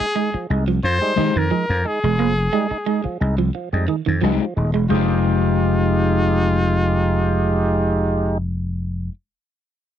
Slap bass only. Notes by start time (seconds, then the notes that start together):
0.01 muted slap bass stroke
0.34 muted slap bass stroke
0.50 C2
0.84 F2
1.18 muted slap bass stroke
1.36 F2
1.70 F2
2.04 E1
2.19 F1
2.71 muted slap bass stroke
3.05 muted slap bass stroke
3.21 C2
3.73 F2
4.08 F2
4.23 C2
4.57 D#1
4.75 E1
4.91 F1